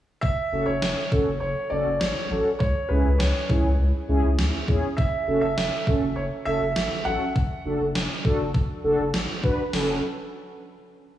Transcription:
0.21 analog synth bass F#1, grand piano E5, kick
0.52 analog synth bass F#1, analog polysynth C#4 F#4 A4
0.66 analog synth bass F#1, grand piano C#5
0.82 analog synth bass F#1, snare
1.12 analog synth bass F#1, analog polysynth C#4 F#4 A4, kick
1.27 analog synth bass F#1
1.40 analog synth bass F#1, grand piano C#5
1.70 analog synth bass F#1, analog polysynth C#4 F#4 A4, grand piano D5
1.86 analog synth bass F#1
2.00 analog synth bass G#1, grand piano C#5, snare
2.31 analog synth bass A1, analog polysynth C#4 F#4 A4
2.59 analog synth bass C#2, grand piano C#5, kick
2.89 analog synth bass C#2, analog polysynth C#4 E4 G#4, grand piano B4
3.05 analog synth bass C#2
3.18 analog synth bass C#2, grand piano C#5, snare
3.49 analog synth bass C#2, analog polysynth C#4 E4 G#4, kick
3.64 analog synth bass C#2
3.79 analog synth bass C#2
4.09 analog synth bass C#2, analog polysynth C#4 E4 G#4
4.24 analog synth bass C#2
4.39 analog synth bass D2, snare
4.68 analog synth bass E2, analog polysynth C#4 E4 G#4, kick
4.97 analog synth bass F#1, grand piano E5, kick
5.28 analog synth bass F#1, analog polysynth C#4 F#4 A4
5.41 analog synth bass F#1, grand piano E5
5.57 analog synth bass F#1, snare
5.87 analog synth bass F#1, analog polysynth C#4 F#4 A4, kick
6.02 analog synth bass F#1
6.16 analog synth bass F#1, grand piano C#5
6.45 analog synth bass F#1, analog polysynth C#4 F#4 A4, grand piano E5
6.61 analog synth bass F#1
6.76 analog synth bass G#1, snare
7.05 analog synth bass A1, analog polysynth C#4 F#4 A4, grand piano F#5
7.36 analog synth bass F#1, kick
7.65 analog synth bass F#1, analog polysynth D4 F#4 A4
7.80 analog synth bass F#1
7.95 analog synth bass F#1, snare
8.25 analog synth bass F#1, analog polysynth D4 F#4 A4, kick
8.40 analog synth bass F#1
8.54 analog synth bass F#1, kick
8.84 analog synth bass F#1, analog polysynth D4 F#4 A4
8.99 analog synth bass F#1
9.14 analog synth bass G#1, snare
9.44 analog synth bass A1, analog polysynth D4 F#4 B4, kick
9.73 analog synth bass F#1, analog polysynth C#4 F#4 A4, snare, open hi-hat

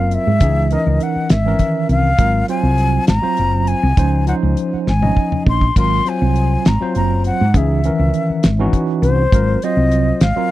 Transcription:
Already playing: fretless electric bass F#1, tine electric piano F#3 C4 F4 A#4, flute F5
0.11 flute E5, closed hi-hat
0.27 fretless electric bass G#2
0.40 fretless electric bass C#2, tine electric piano E3 C#4 D#4 G#4, kick, closed hi-hat
0.71 tine electric piano E3 C#4 D#4 A#4, flute D#5, closed hi-hat
0.86 fretless electric bass C#2
1.00 flute F#5, closed hi-hat
1.16 muted fretless electric bass stroke
1.29 fretless electric bass G#1, flute E5, snare, closed hi-hat
1.46 tine electric piano D#3 E3 C#4 A#4
1.59 kick, closed hi-hat
1.89 fretless electric bass C2, flute F5, closed hi-hat
2.18 fretless electric bass G#1, tine electric piano F#3 C4 F4 A#4, kick, closed hi-hat
2.48 tine electric piano F#3 C4 F4 C5, flute G#5, closed hi-hat
2.63 fretless electric bass C2
2.78 closed hi-hat
3.07 fretless electric bass G#1, flute A#5, snare, closed hi-hat
3.22 tine electric piano F#3 C4 F4 C5, muted fretless electric bass stroke
3.37 fretless electric bass F#1, closed hi-hat
3.67 flute G#5, closed hi-hat
3.83 fretless electric bass C2
3.97 fretless electric bass C#2, tine electric piano F3 C#4 D#4 C5, kick, closed hi-hat
4.27 tine electric piano F3 C#4 D#4 C5, flute F#5, closed hi-hat
4.43 fretless electric bass C#2
4.57 closed hi-hat
4.73 muted fretless electric bass stroke
4.87 fretless electric bass G#1, flute G#5, snare
5.01 tine electric piano F3 C#4 D#4 D#5, high tom
5.17 kick
5.32 mid tom
5.46 fretless electric bass A#1, flute C6, kick
5.61 kick
5.76 fretless electric bass G#1, tine electric piano F#3 C4 F4 A#4, flute C6, kick, closed hi-hat, crash
6.05 tine electric piano F#3 C4 F4 C5, flute G#5, closed hi-hat
6.22 fretless electric bass C2
6.36 closed hi-hat
6.65 fretless electric bass G#1, flute A#5, snare, closed hi-hat
6.81 tine electric piano F#3 C4 F4 C5
6.95 fretless electric bass F#1, flute A#5, closed hi-hat
7.24 flute F#5, closed hi-hat
7.41 fretless electric bass G#2
7.54 fretless electric bass C#2, tine electric piano E3 C#4 D#4 G#4, flute E5, kick, closed hi-hat
7.84 tine electric piano D#3 E3 C#4 A#4, closed hi-hat
7.99 fretless electric bass C#2
8.14 closed hi-hat
8.29 muted fretless electric bass stroke
8.43 fretless electric bass G#1, snare, closed hi-hat
8.59 tine electric piano E3 C#4 D#4 F#4
8.73 kick, closed hi-hat
9.02 fretless electric bass C2, flute C5, closed hi-hat
9.32 fretless electric bass G#1, tine electric piano F#3 C4 F4 A#4, kick, closed hi-hat
9.62 tine electric piano F#3 C4 F4 C5, flute D#5, closed hi-hat
9.77 fretless electric bass C2
9.91 closed hi-hat
10.21 fretless electric bass G#1, flute F5, snare, closed hi-hat
10.36 tine electric piano F#3 C4 F4 A#4, muted fretless electric bass stroke

